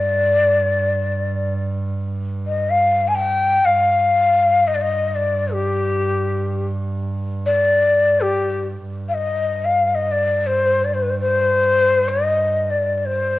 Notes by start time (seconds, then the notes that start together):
Already playing: G2 D5
2.46 D#5
2.70 F5
3.08 G#5
3.15 G5
3.64 G2 F5
4.67 D#5
4.74 D5
4.81 D#5
5.15 D5
5.53 G4
7.46 D5
8.21 G4
8.82 G2
9.08 F5
9.14 D#5
9.64 F5
9.94 D#5
10.11 D5
10.46 C5
10.84 D5
10.94 C5
11.02 B4
11.10 C5
11.20 C5
12.08 D#5
12.70 D5
12.97 D5
13.05 C5